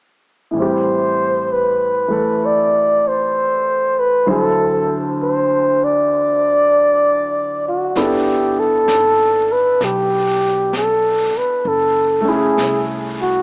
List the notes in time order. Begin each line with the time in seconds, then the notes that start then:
0.51 A2 E3
0.56 G3 C4 C5
0.62 G4
1.53 B4
2.08 E3 A3 A4
2.46 D5
3.08 C5
3.99 B4
4.27 D2 D3 F#3 E4 C5
4.31 A4
5.23 C5
5.84 D5
7.68 F#4
7.95 G1 B3 D4 E4 G4 A4, brush sweep, snare
8.60 A4
8.88 G#1, brush sweep, snare, hi-hat pedal
9.52 B4
9.80 B1 G4, brush sweep, snare
10.73 brush sweep, snare, hi-hat pedal
10.77 A4
11.34 B4, muted upright bass stroke
11.65 F#1 A4, brush sweep
12.21 A3 C#4
12.28 E4 G#4
12.57 C2, brush sweep, snare, hi-hat pedal
13.22 F#4